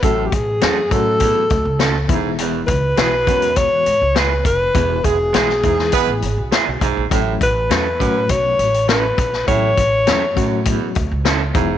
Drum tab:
HH |x-x-x-x-x-x-x-x-|x-x-x-xxx-x-x-x-|x-x-x-x-x-x-x-x-|x-x-x-x-x-xxx-x-|
SD |----o-------o---|----o-------o---|----oo-o----o---|----o-------o--o|
BD |o-o---o-o-o---o-|--o---o-o-----o-|o-o---o-o-----o-|o-o---o-o-----o-|

HH |x-x-x-x-x-x-x-x-|
SD |----o-------o---|
BD |o-o---o-o-o---o-|